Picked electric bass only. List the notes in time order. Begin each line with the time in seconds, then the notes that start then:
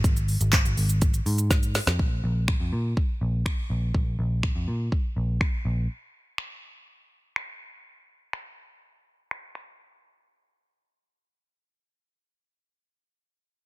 0.04 G#1
0.41 G#1
0.65 G#1
0.77 G#1
1.26 G#2
1.87 F2
1.99 A#1
2.24 A#1
2.60 F2
2.73 A#2
3.21 A#1
3.70 A#1
3.94 A#1
4.19 A#1
4.56 F2
4.68 A#2
5.16 A#1
5.65 A#1